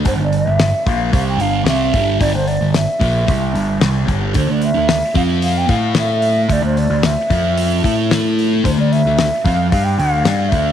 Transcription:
<<
  \new Staff \with { instrumentName = "Flute" } { \time 4/4 \key g \dorian \tempo 4 = 112 c''16 d''16 e''4 f''8 f''16 g''16 f''8 e''4 | d''16 c''16 d''8 e''2 r4 | c''16 d''16 e''4 f''8 f''16 g''16 f''8 e''4 | d''16 c''16 d''8 e''2 r4 |
c''16 d''16 e''4 f''8 f''16 g''16 f''4 e''8 | }
  \new Staff \with { instrumentName = "Distorted electric guitar" } { \clef bass \time 4/4 \key g \dorian <g, d>16 <g, d>8 <g, d>8 r16 <bes, f bes>8 <c g c'>8 <g, d g>8 <c g c'>8 <g, d g>8 | <g, d>16 <g, d>8 <g, d>8 r16 <bes, f bes>8 <c g c'>8 <g, d g>8 <c g c'>8 <g, d g>8 | <d a>16 <d a>8 <d a>8 r16 <f c' f'>4 <a e' a'>4. | <d a>16 <d a>8 <d a>8 r16 <f c' f'>4 <a e' a'>4. |
<d a>16 <d a>8 <d a>8 r16 <f c' f'>8 <g d' g'>8 <d a d'>8 <g d' g'>8 <d a d'>8 | }
  \new Staff \with { instrumentName = "Picked electric bass" } { \clef bass \time 4/4 \key g \dorian g,,16 g,,8 g,,8 r16 bes,,8 c,8 g,,8 c,8 g,,8 | g,,16 g,,8 g,,8 r16 bes,,8 c,8 g,,8 c,8 g,,8 | d,16 d,8 d,8 r16 f,4 a,4. | d,16 d,8 d,8 r16 f,4 a,4. |
d,16 d,8 d,8 r16 f,8 g,8 d,8 g,8 d,8 | }
  \new DrumStaff \with { instrumentName = "Drums" } \drummode { \time 4/4 <hho bd>8 hho8 <hho sn>8 <hho bd>8 <hho bd>8 hho8 <hho sn>8 <hho bd>8 | <hho bd>8 hho8 <hho sn>8 <hho bd>8 <hho bd>8 hho8 <hho sn>8 <hho bd>8 | <hho bd>8 hho8 <hho sn>8 <hho bd>8 hho8 <hho bd>8 <hho sn>8 hho8 | <hho bd>8 hho8 <hho sn>8 <hho bd>8 hho8 <hho bd>8 <hho sn>8 hho8 |
<hho bd>8 hho8 <hho sn>8 <hho bd>8 <hho bd>8 hho8 <hho sn>8 <hho bd>8 | }
>>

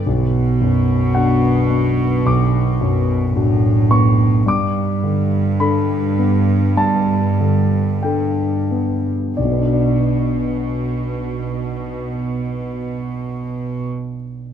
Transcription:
<<
  \new Staff \with { instrumentName = "Harp" } { \time 4/4 \key b \minor \tempo 4 = 50 <b d' a' b' d''>1~ | <b d' a' b' d''>1 | r1 | }
  \new Staff \with { instrumentName = "Grand piano" } { \time 4/4 \key b \minor r4 fis''4 d'''4. cis'''8 | d'''4 b''4 a''4 g''4 | <b,, b, b d' fis' d''>1 | }
  \new Staff \with { instrumentName = "Grand piano" } { \time 4/4 \key b \minor b,,8 fis,8 <d' fis'>8 b8 b,,8 fis,8 <d' fis'>8 b8 | g,8 d8 <d' a'>8 b8 g,8 d8 <d' a'>8 b8 | r1 | }
  \new Staff \with { instrumentName = "Cello section" } { \clef bass \time 4/4 \key b \minor b,2. a,4 | g,1 | b,1 | }
>>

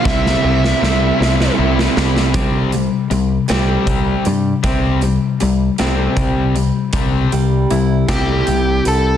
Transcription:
<<
  \new Staff \with { instrumentName = "Lead electric guitar" } { \time 6/8 \key c \major \tempo 4. = 52 e''2 r4 | r2. | r2. | r4. g'4 a'8 | }
  \new Staff \with { instrumentName = "Distorted electric guitar" } { \time 6/8 \key c \major <c g c' e'>8 <g c' e'>8 <c g c' e'>8 <c g c' e'>8 <c g c' e'>4 | r2. | r2. | r2. | }
  \new Staff \with { instrumentName = "Overdriven electric guitar" } { \clef bass \time 6/8 \key c \major <c g c' e'>8 <g c' e'>8 <c g c' e'>8 <g c' e'>8 <c g c' e'>8 <g c' e'>8 | <c g c'>8 <c g>8 <c g>8 <c g c'>4 <c g>8 | <c g c'>8 <c g>8 <c g>8 <c g c'>4 <c g>8 | <c g c'>8 <c g>8 <c g>8 <c g c'>8 <c g>8 r8 | }
  \new Staff \with { instrumentName = "Steel-string acoustic guitar" } { \clef bass \time 6/8 \key c \major r2. | <c g c'>8 <c g>8 <c g>8 <c g c'>4 <c g>8 | <c g c'>8 <c g>8 <c g>8 <c g c'>4 <c g>8 | c8 g8 e'8 c'8 c8 g8 | }
  \new Staff \with { instrumentName = "Picked electric bass" } { \clef bass \time 6/8 \key c \major c,8 c,8 c,8 c,8 c,8 c,8 | c,4 c,8 c,8 c,8 g,8 | c,4 c,8 c,8 c,4 | c,8 c,8 c,8 c,8 c,8 c,8 | }
  \new DrumStaff \with { instrumentName = "Drums" } \drummode { \time 6/8 <bd sn>16 sn8 sn16 sn8 sn16 sn8 sn16 sn16 sn16 | <hh bd>8 hh8 hh8 <hh sn>8 <hh bd>8 hh8 | <hh bd>8 hh8 hh8 <hh sn>8 <hh bd>8 hh8 | <hh bd>8 hh8 hh8 <hh bd sn>8 hh8 hh8 | }
>>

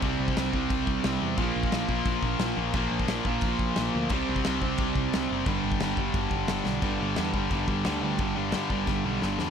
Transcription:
<<
  \new Staff \with { instrumentName = "Distorted electric guitar" } { \clef bass \time 4/4 \key c \lydian \tempo 4 = 176 <c g c'>2.~ <c g c'>8 <c g c'>8 | <bes, f bes>2.~ <bes, f bes>8 <bes, f bes>8 | <bes, f bes>2.~ <bes, f bes>8 <bes, f bes>8 | <c g c'>2.~ <c g c'>8 <c g c'>8 |
<g, d g>2.~ <g, d g>8 <g, d g>8 | <g, d g>1 | <g, d g>1 | }
  \new Staff \with { instrumentName = "Distorted electric guitar" } { \clef bass \time 4/4 \key c \lydian <c g c'>1 | <bes, f bes>1 | <bes, f bes>1 | <c g c'>1 |
<g, d g>1 | <g, d g>8 <g, d g>8 <g, d g>8 <g, d g>8 <g, d g>8 <g, d g>8 <g, d g>8 <g, d g>8 | <g, d g>8 <g, d g>8 <g, d g>8 <g, d g>8 <g, d g>8 <g, d g>8 <g, d g>8 <g, d g>8 | }
  \new Staff \with { instrumentName = "Overdriven electric guitar" } { \clef bass \time 4/4 \key c \lydian <c g c'>4. <c g c'>2~ <c g c'>8 | <bes, f bes>4. <bes, f bes>2~ <bes, f bes>8 | <bes, f bes>4. <bes, f bes>2~ <bes, f bes>8 | <c g c'>4. <c g c'>2~ <c g c'>8 |
<g, d g>4. <g, d g>2~ <g, d g>8 | <g, d g>8 <g, d g>8 <g, d g>8 <g, d g>8 <g, d g>8 <g, d g>8 <g, d g>8 <g, d g>8 | <g, d g>8 <g, d g>8 <g, d g>8 <g, d g>8 <g, d g>8 <g, d g>8 <g, d g>8 <g, d g>8 | }
  \new Staff \with { instrumentName = "Picked electric bass" } { \clef bass \time 4/4 \key c \lydian c,8 c,8 c,8 c,8 c,8 c,8 c,8 e,8 | bes,,8 bes,,8 bes,,8 bes,,8 bes,,8 bes,,8 bes,,8 bes,,8 | bes,,8 bes,,8 bes,,8 bes,,8 bes,,8 bes,,8 bes,,8 d,8 | c,8 c,8 c,8 c,8 c,8 c,8 c,8 fis,,8 |
g,,8 g,,8 g,,8 g,,8 g,,8 g,,8 g,,8 b,,8 | g,,8 g,,8 e,8 g,,8 g,,8 g,,8 d,8 d,8 | g,,8 g,,8 g,8 g,,8 g,,8 b,,8 g,,8 e,8 | }
  \new DrumStaff \with { instrumentName = "Drums" } \drummode { \time 4/4 <cymc bd>8. bd16 <cymc sn>8 bd8 <cymc bd>8 bd8 <cymc sn>4 | <cymc bd>8. bd16 <cymc sn>8 bd8 <cymc bd>8 bd8 <cymc sn>4 | <cymc bd>8. bd16 <cymc sn>8 bd8 <cymc bd>8 bd8 <cymc sn>4 | <cymc bd>8. bd16 <cymc sn>8 bd8 <cymc bd>8 bd8 <cymc sn>4 |
<cymc bd>8. bd16 <cymc sn>8 bd8 <cymc bd>8 bd8 <cymc sn>8 sn8 | <cymc bd>4 <cymc sn>8 bd8 <cymc bd>8 bd8 <cymc sn>4 | <cymc bd>4 <cymc sn>8 bd8 <bd sn>4 sn8 sn8 | }
>>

